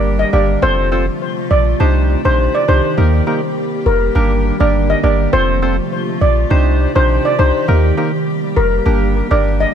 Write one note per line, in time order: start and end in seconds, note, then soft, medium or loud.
0.00 0.24 G1 loud
0.00 0.61 D3 medium
0.00 0.60 G3 medium
0.00 0.30 A#3 medium
0.00 0.60 A#3 medium
0.00 0.30 D4 medium
0.00 0.30 G4 medium
0.00 0.60 G4 medium
0.00 0.30 A#4 medium
0.19 0.31 D#5 medium
0.33 0.56 G1 loud
0.33 0.60 A#3 medium
0.33 0.60 D4 medium
0.33 0.60 G4 medium
0.33 0.60 A#4 medium
0.33 0.46 D5 medium
0.62 1.09 F1 loud
0.62 2.95 C3 medium
0.62 1.79 F3 medium
0.62 1.79 A3 medium
0.62 0.90 C4 medium
0.62 0.90 F4 medium
0.62 1.79 F4 medium
0.62 0.90 A4 medium
0.62 1.05 C5 loud
0.62 0.90 C5 loud
0.92 1.06 C4 medium
0.92 1.06 F4 medium
0.92 1.06 A4 medium
0.92 1.06 C5 medium
1.51 1.74 A#1 medium
1.51 1.63 D5 medium
1.80 2.16 C2 loud
1.80 4.13 D#3 medium
1.80 2.21 D4 medium
1.80 2.21 D#4 medium
1.80 5.30 G4 medium
1.80 2.21 G4 medium
1.80 2.22 C5 loud
1.80 2.97 D5 medium
2.25 2.48 A#1 medium
2.25 2.65 D4 medium
2.25 2.65 D#4 medium
2.25 2.65 G4 medium
2.25 2.36 C5 medium
2.25 2.65 C5 medium
2.55 2.66 D5 medium
2.68 2.81 C2 medium
2.68 2.95 D4 medium
2.68 2.95 D#4 medium
2.68 2.96 G4 medium
2.68 2.81 C5 medium
2.68 2.96 C5 medium
2.97 3.21 D#2 loud
2.97 5.31 G3 medium
2.97 3.25 A#3 medium
2.97 5.31 A#3 medium
2.97 3.25 D#4 medium
2.97 3.25 G4 medium
2.97 3.25 A#4 loud
3.27 3.41 A#3 medium
3.27 3.41 D#4 medium
3.27 3.41 G4 medium
3.27 3.41 A#4 medium
3.86 4.09 F1 loud
3.86 3.99 A#4 medium
4.15 4.51 G1 loud
4.15 5.32 D3 medium
4.15 4.57 A#3 loud
4.15 4.57 D4 medium
4.15 4.57 G4 medium
4.15 4.57 A#4 loud
4.60 4.95 G1 loud
4.60 5.00 A#3 medium
4.60 5.00 D4 medium
4.60 5.00 G4 medium
4.60 5.00 A#4 medium
4.60 4.72 D5 medium
4.90 5.01 D#5 medium
5.03 5.27 G1 medium
5.03 5.31 A#3 medium
5.03 5.31 D4 medium
5.03 5.31 G4 medium
5.03 5.31 A#4 medium
5.03 5.16 D5 medium
5.33 5.80 F1 loud
5.33 6.49 C3 medium
5.33 6.49 F3 medium
5.33 6.49 A3 medium
5.33 5.60 C4 medium
5.33 5.60 F4 medium
5.33 6.49 F4 medium
5.33 5.60 A4 medium
5.33 5.75 C5 loud
5.33 5.60 C5 loud
5.62 5.76 C4 medium
5.62 5.76 F4 medium
5.62 5.76 A4 medium
5.62 5.77 C5 medium
6.21 6.45 A#1 medium
6.21 6.34 D5 medium
6.50 6.86 C2 loud
6.50 7.67 C3 medium
6.50 8.84 D#3 medium
6.50 6.92 D4 medium
6.50 6.92 D#4 medium
6.50 9.74 G4 medium
6.50 6.92 G4 medium
6.50 6.92 C5 loud
6.50 7.67 D5 medium
6.95 7.19 A#1 medium
6.95 7.35 D4 medium
6.95 7.36 D#4 medium
6.95 7.36 G4 medium
6.95 7.07 C5 medium
6.95 7.36 C5 medium
7.25 7.36 D5 medium
7.39 7.51 C2 medium
7.39 7.66 D4 medium
7.39 7.66 D#4 medium
7.39 7.66 G4 medium
7.39 7.52 C5 medium
7.39 7.66 C5 medium
7.68 7.92 D#2 loud
7.68 9.74 G3 medium
7.68 7.95 A#3 medium
7.68 9.74 A#3 medium
7.68 7.95 D#4 medium
7.68 7.96 G4 medium
7.68 7.96 A#4 loud
7.97 8.12 A#3 medium
7.97 8.12 D#4 medium
7.97 8.12 G4 medium
7.97 8.12 A#4 medium
8.57 8.80 F1 loud
8.57 8.69 A#4 medium
8.86 9.22 G1 loud
8.86 9.74 D3 medium
8.86 9.27 A#3 loud
8.86 9.27 D4 medium
8.86 9.27 G4 medium
8.86 9.27 A#4 loud
9.31 9.65 G1 loud
9.31 9.71 A#3 medium
9.31 9.71 D4 medium
9.31 9.71 G4 medium
9.31 9.71 A#4 medium
9.31 9.42 D5 medium
9.60 9.72 D#5 medium